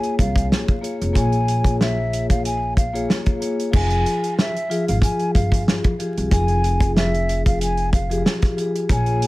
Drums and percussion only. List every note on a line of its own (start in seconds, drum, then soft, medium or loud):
0.03 closed hi-hat soft
0.19 kick loud
0.19 closed hi-hat medium
0.36 kick medium
0.36 closed hi-hat medium
0.52 snare loud
0.68 kick medium
0.68 closed hi-hat soft
0.84 closed hi-hat medium
1.02 closed hi-hat medium
1.15 kick loud
1.15 closed hi-hat loud
1.32 closed hi-hat soft
1.48 closed hi-hat medium
1.64 kick medium
1.64 closed hi-hat medium
1.81 snare loud
2.13 closed hi-hat medium
2.30 kick medium
2.30 closed hi-hat medium
2.45 closed hi-hat medium
2.77 kick loud
2.77 closed hi-hat medium
2.95 closed hi-hat medium
3.10 snare loud
3.26 kick medium
3.26 closed hi-hat soft
3.42 closed hi-hat medium
3.60 closed hi-hat soft
3.73 kick loud
3.73 crash loud
3.90 closed hi-hat soft
4.06 closed hi-hat medium
4.24 closed hi-hat medium
4.39 snare loud
4.57 closed hi-hat soft
4.71 closed hi-hat medium
4.88 closed hi-hat medium
5.02 kick medium
5.02 closed hi-hat medium
5.19 closed hi-hat soft
5.35 kick loud
5.35 closed hi-hat medium
5.52 kick medium
5.52 closed hi-hat medium
5.68 snare loud
5.84 kick loud
5.84 closed hi-hat soft
6.00 closed hi-hat medium
6.18 closed hi-hat medium
6.31 kick loud
6.31 closed hi-hat loud
6.48 closed hi-hat soft
6.64 closed hi-hat medium
6.80 kick loud
6.80 closed hi-hat medium
6.96 snare loud
7.14 closed hi-hat soft
7.29 closed hi-hat medium
7.46 kick loud
7.46 closed hi-hat medium
7.61 closed hi-hat medium
7.77 closed hi-hat soft
7.93 kick loud
7.93 closed hi-hat medium
8.11 closed hi-hat medium
8.26 snare loud
8.42 kick loud
8.42 snare soft
8.42 closed hi-hat soft
8.58 closed hi-hat medium
8.76 closed hi-hat medium
8.89 kick loud
8.89 closed hi-hat loud
9.06 closed hi-hat soft
9.22 closed hi-hat medium